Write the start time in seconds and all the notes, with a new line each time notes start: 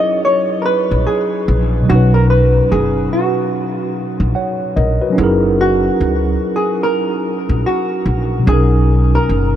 Already playing: F#3 C#4 D#4 E4 F#4 G#4 B4 C#5 D#5
0.25 C#5
0.62 A#4 B4
0.91 A#1
1.07 G#4
1.48 A#1
1.82 B2 F#3
1.89 B1 C#4 D#4 F#4
1.95 B4
2.14 A#4
2.30 B4
2.72 F#1 G#4
3.13 F#4
4.20 A#1
4.35 C#5 F#5
4.76 A#1 A#4 D#5
5.02 F#4 B4
5.10 F#3 C#4
5.15 F#1 D#4 E4
5.21 G#4 A#4
5.61 F#4
6.01 C#2
6.56 G#4
6.83 A#4
7.49 A#1
7.66 F#4
8.06 A#1
8.39 B2 F#3
8.46 B1 C#4 D#4 G#4
8.53 A#4
9.15 A#4
9.29 F#1